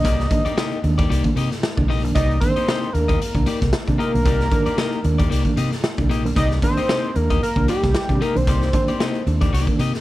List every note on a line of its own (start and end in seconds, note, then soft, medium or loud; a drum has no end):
0.00 0.98 D#5 medium
0.04 0.27 C2 loud
0.04 0.19 C3 medium
0.04 0.25 A#3 medium
0.04 0.26 D#4 medium
0.04 0.26 G4 medium
0.04 0.26 D5 loud
0.04 kick loud
0.04 closed hi-hat medium
0.20 snare soft
0.20 closed hi-hat soft
0.31 0.45 D#3 medium
0.31 0.44 A#3 medium
0.31 0.44 D4 medium
0.31 muted clean electric guitar stroke soft
0.31 kick loud
0.31 closed hi-hat medium
0.45 0.50 A#3 soft
0.45 0.56 A#3 medium
0.45 0.50 D4 soft
0.45 0.56 D#4 medium
0.45 0.56 G4 medium
0.45 0.58 D5 medium
0.45 muted fingered electric bass stroke soft
0.45 closed hi-hat medium
0.57 0.71 C3 medium
0.57 0.78 A#3 medium
0.57 0.78 D#4 loud
0.57 0.78 G4 loud
0.57 0.79 D#5 medium
0.57 snare loud
0.72 closed hi-hat soft
0.83 1.06 D#2 medium
0.83 0.97 D#3 medium
0.83 0.98 A#3 medium
0.83 0.98 D4 medium
0.83 muted clean electric guitar stroke soft
0.83 closed hi-hat medium
0.98 1.08 A#3 medium
0.98 1.08 D#4 medium
0.98 1.09 G4 medium
0.98 1.09 D5 medium
0.98 kick medium
0.98 closed hi-hat medium
1.09 1.23 C2 medium
1.09 1.30 A#3 medium
1.09 1.24 D#4 medium
1.09 1.24 G4 medium
1.09 1.23 D5 medium
1.09 closed hi-hat medium
1.24 1.36 D#3 medium
1.24 1.36 A#3 medium
1.24 1.36 D4 medium
1.24 muted clean electric guitar stroke soft
1.24 kick medium
1.24 closed hi-hat soft
1.36 1.49 C3 medium
1.36 1.53 A#3 medium
1.36 1.51 D#4 medium
1.36 1.50 G4 medium
1.36 1.51 D#5 medium
1.36 closed hi-hat medium
1.51 1.62 C3 medium
1.51 muted clean electric guitar stroke medium
1.51 snare soft
1.51 closed hi-hat soft
1.63 snare loud
1.77 1.89 C2 medium
1.77 1.88 D#3 medium
1.77 1.88 A#3 medium
1.77 1.88 D4 medium
1.77 muted clean electric guitar stroke soft
1.77 kick loud
1.89 2.04 A#1 medium
1.89 2.03 C3 medium
1.89 2.10 A#3 medium
1.89 2.04 D#4 medium
1.89 2.03 G4 medium
1.89 2.03 D#5 loud
1.89 open hi-hat medium
2.04 2.14 B1 medium
2.04 2.15 D#3 medium
2.04 2.15 A#3 medium
2.04 2.15 D4 medium
2.04 muted clean electric guitar stroke soft
2.04 closed hi-hat medium
2.15 2.38 C2 loud
2.15 2.29 C3 medium
2.15 2.36 A#3 medium
2.15 2.36 D#4 medium
2.15 2.37 G4 medium
2.15 2.37 D5 medium
2.15 2.40 D#5 loud
2.15 kick loud
2.15 closed hi-hat medium
2.31 closed hi-hat soft
2.40 2.56 D#3 medium
2.40 2.56 A#3 medium
2.40 2.56 D4 medium
2.40 2.94 C5 loud
2.40 muted clean electric guitar stroke soft
2.40 kick medium
2.40 closed hi-hat medium
2.56 2.66 A#3 soft
2.56 2.67 D#4 medium
2.56 2.67 G4 medium
2.56 2.68 D#5 medium
2.56 muted fingered electric bass stroke soft
2.56 closed hi-hat medium
2.67 2.82 C3 medium
2.67 2.89 A#3 medium
2.67 2.89 D#4 medium
2.67 2.89 G4 medium
2.67 2.89 D#5 medium
2.67 snare loud
2.83 closed hi-hat soft
2.93 3.17 D#2 medium
2.93 3.08 D#3 medium
2.93 3.08 A#3 medium
2.93 3.08 D4 medium
2.93 3.73 A#4 medium
2.93 muted clean electric guitar stroke soft
2.93 closed hi-hat medium
3.08 3.14 A#3 soft
3.08 3.19 A#3 medium
3.08 3.14 D4 soft
3.08 3.20 D#4 soft
3.08 3.20 G4 medium
3.08 3.21 D#5 medium
3.08 kick loud
3.08 closed hi-hat medium
3.21 muted clean electric guitar stroke soft
3.21 muted fingered electric bass stroke soft
3.21 closed hi-hat medium
3.34 3.45 C2 medium
3.34 3.46 D#3 medium
3.34 3.46 A#3 medium
3.34 3.46 D4 medium
3.34 muted clean electric guitar stroke soft
3.34 kick medium
3.34 closed hi-hat soft
3.46 3.67 A#3 medium
3.46 3.61 D#4 medium
3.46 3.60 G4 medium
3.46 3.60 D5 medium
3.46 closed hi-hat medium
3.61 3.72 C2 medium
3.61 3.72 C3 medium
3.61 muted clean electric guitar stroke soft
3.61 kick medium
3.61 snare soft
3.61 closed hi-hat soft
3.73 snare loud
3.87 3.97 C3 medium
3.87 3.99 D#3 medium
3.87 3.99 A#3 medium
3.87 3.99 D4 medium
3.87 muted clean electric guitar stroke soft
3.87 kick medium
3.87 closed hi-hat soft
3.98 4.14 C3 medium
3.98 4.20 A#3 medium
3.98 4.13 D#4 medium
3.98 4.13 G4 medium
3.98 5.53 A#4 loud
3.98 4.13 D#5 medium
3.98 closed hi-hat medium
4.13 4.26 B1 medium
4.13 4.25 D#3 medium
4.13 4.25 A#3 medium
4.13 4.25 D4 medium
4.13 muted clean electric guitar stroke soft
4.13 closed hi-hat medium
4.25 4.48 C2 loud
4.25 4.40 C3 medium
4.25 4.46 A#3 medium
4.25 4.47 D#4 medium
4.25 4.47 G4 medium
4.25 4.47 D5 medium
4.25 kick loud
4.25 closed hi-hat medium
4.40 snare soft
4.40 closed hi-hat soft
4.51 4.66 D#3 medium
4.51 4.66 A#3 medium
4.51 4.66 D4 loud
4.51 muted clean electric guitar stroke soft
4.51 kick medium
4.51 closed hi-hat medium
4.66 4.72 A#3 soft
4.66 4.76 A#3 medium
4.66 4.72 D4 soft
4.66 4.77 D#4 medium
4.66 4.77 G4 medium
4.66 4.78 D5 medium
4.66 muted fingered electric bass stroke soft
4.66 closed hi-hat soft
4.77 4.92 C3 medium
4.77 4.99 A#3 medium
4.77 4.99 D#4 medium
4.77 4.99 G4 medium
4.77 4.99 D#5 loud
4.77 snare loud
4.93 closed hi-hat soft
5.04 5.27 D#2 medium
5.04 5.18 D#3 medium
5.04 5.18 A#3 medium
5.04 5.18 D4 medium
5.04 muted clean electric guitar stroke soft
5.04 closed hi-hat medium
5.18 5.24 A#3 soft
5.18 5.29 A#3 medium
5.18 5.24 D4 soft
5.18 5.29 D#4 medium
5.18 5.30 G4 medium
5.18 5.30 D5 medium
5.18 kick medium
5.18 closed hi-hat medium
5.30 5.44 C2 medium
5.30 5.51 A#3 medium
5.30 5.45 D#4 medium
5.30 5.44 G4 medium
5.30 5.44 D5 medium
5.30 closed hi-hat loud
5.45 5.57 D#3 medium
5.45 5.57 A#3 medium
5.45 5.57 D4 medium
5.45 muted clean electric guitar stroke soft
5.45 kick medium
5.45 closed hi-hat soft
5.57 5.70 C3 medium
5.57 5.74 A#3 medium
5.57 5.72 D#4 medium
5.57 5.71 G4 medium
5.57 5.71 D#5 medium
5.57 closed hi-hat medium
5.72 5.83 C3 medium
5.72 muted clean electric guitar stroke soft
5.72 snare soft
5.72 closed hi-hat soft
5.84 snare loud
5.98 6.10 C2 medium
5.98 6.09 D#3 medium
5.98 6.09 A#3 medium
5.98 6.09 D4 medium
5.98 muted clean electric guitar stroke medium
5.98 kick loud
5.98 closed hi-hat soft
6.10 6.25 A#1 loud
6.10 6.24 C3 medium
6.10 6.31 A#3 medium
6.10 6.24 D#4 medium
6.10 6.24 G4 medium
6.10 6.24 D#5 medium
6.10 closed hi-hat medium
6.25 6.35 B1 medium
6.25 6.36 D#3 medium
6.25 6.36 A#3 medium
6.25 6.36 D4 medium
6.25 muted clean electric guitar stroke soft
6.25 closed hi-hat medium
6.36 6.58 C2 loud
6.36 6.50 C3 medium
6.36 6.57 A#3 medium
6.36 6.57 D#4 medium
6.36 6.58 G4 medium
6.36 6.58 D5 medium
6.36 6.48 D#5 loud
6.36 kick loud
6.36 closed hi-hat medium
6.51 snare soft
6.51 closed hi-hat soft
6.62 6.76 D#3 medium
6.62 6.77 A#3 medium
6.62 6.76 D4 loud
6.62 7.17 C5 loud
6.62 muted clean electric guitar stroke soft
6.62 kick loud
6.62 closed hi-hat medium
6.77 6.82 A#3 soft
6.77 6.87 A#3 medium
6.77 6.82 D4 soft
6.77 6.88 D#4 medium
6.77 6.88 G4 medium
6.77 6.89 D#5 medium
6.77 muted fingered electric bass stroke soft
6.77 closed hi-hat medium
6.89 7.03 C3 medium
6.89 7.10 A#3 medium
6.89 7.10 D#4 medium
6.89 7.10 G4 medium
6.89 7.10 D#5 medium
6.89 snare loud
7.04 closed hi-hat soft
7.16 7.38 D#2 loud
7.16 7.29 D#3 medium
7.16 7.29 A#3 medium
7.16 7.29 D4 medium
7.16 7.42 A#4 medium
7.16 muted clean electric guitar stroke soft
7.16 closed hi-hat medium
7.30 7.35 A#3 soft
7.30 7.41 A#3 medium
7.30 7.35 D4 soft
7.30 7.41 D#4 medium
7.30 7.42 G4 medium
7.30 7.43 D#5 medium
7.30 kick medium
7.30 closed hi-hat medium
7.42 7.67 A#4 medium
7.42 muted clean electric guitar stroke soft
7.42 muted fingered electric bass stroke soft
7.42 closed hi-hat medium
7.56 7.66 C2 loud
7.56 7.67 D#3 medium
7.56 7.68 A#3 medium
7.56 7.68 D4 medium
7.56 muted clean electric guitar stroke soft
7.56 kick medium
7.56 closed hi-hat soft
7.68 7.89 A#3 medium
7.68 7.83 D#4 medium
7.68 8.23 G4 loud
7.68 7.83 G4 medium
7.68 7.82 D5 medium
7.68 closed hi-hat medium
7.83 7.93 C2 medium
7.83 7.94 C3 medium
7.83 muted clean electric guitar stroke soft
7.83 kick medium
7.83 snare soft
7.83 closed hi-hat soft
7.95 snare loud
8.09 8.19 C3 loud
8.09 8.20 D#3 medium
8.09 8.20 A#3 medium
8.09 8.20 D4 medium
8.09 muted clean electric guitar stroke soft
8.09 kick medium
8.09 closed hi-hat soft
8.21 8.35 C3 medium
8.21 8.42 A#3 medium
8.21 8.36 D#4 medium
8.21 8.35 G4 medium
8.21 8.38 A#4 medium
8.21 8.36 D#5 medium
8.21 closed hi-hat medium
8.35 8.47 B1 medium
8.35 8.46 D#3 medium
8.35 8.46 A#3 medium
8.35 8.47 D4 medium
8.35 9.41 C5 medium
8.35 muted clean electric guitar stroke soft
8.35 closed hi-hat medium
8.47 8.69 C2 loud
8.47 8.61 C3 medium
8.47 8.68 A#3 medium
8.47 8.69 D#4 medium
8.47 8.69 G4 loud
8.47 8.69 D5 medium
8.47 kick loud
8.47 closed hi-hat medium
8.62 snare soft
8.62 closed hi-hat soft
8.73 8.87 D#3 medium
8.73 8.88 A#3 medium
8.73 8.88 D4 medium
8.73 muted clean electric guitar stroke soft
8.73 kick loud
8.73 closed hi-hat medium
8.88 8.93 A#3 soft
8.88 8.99 A#3 medium
8.88 8.93 D4 soft
8.88 8.99 D#4 medium
8.88 8.99 G4 medium
8.88 9.01 D5 medium
8.88 muted fingered electric bass stroke soft
8.88 closed hi-hat medium
9.00 9.14 C3 medium
9.00 9.21 A#3 loud
9.00 9.21 D#4 medium
9.00 9.21 G4 loud
9.00 9.21 D#5 medium
9.00 snare loud
9.15 closed hi-hat soft
9.27 9.49 D#2 medium
9.27 9.40 D#3 medium
9.27 9.40 A#3 medium
9.27 9.41 D4 medium
9.27 muted clean electric guitar stroke soft
9.27 closed hi-hat medium
9.41 9.46 A#3 soft
9.41 9.52 A#3 medium
9.41 9.46 D4 soft
9.41 9.52 D#4 medium
9.41 9.52 G4 medium
9.41 9.53 D5 medium
9.41 kick medium
9.41 closed hi-hat soft
9.53 9.65 C2 medium
9.53 9.74 A#3 medium
9.53 9.67 D#4 medium
9.53 9.67 G4 medium
9.53 9.66 D5 medium
9.53 closed hi-hat medium
9.67 9.79 D#3 medium
9.67 9.79 A#3 medium
9.67 9.79 D4 medium
9.67 muted clean electric guitar stroke soft
9.67 kick medium
9.67 closed hi-hat soft
9.79 9.91 C3 loud
9.79 9.96 A#3 medium
9.79 9.94 D#4 medium
9.79 9.93 G4 medium
9.79 9.94 D#5 medium
9.79 closed hi-hat medium
9.94 10.01 C3 medium
9.94 muted clean electric guitar stroke soft
9.94 snare soft
9.94 closed hi-hat soft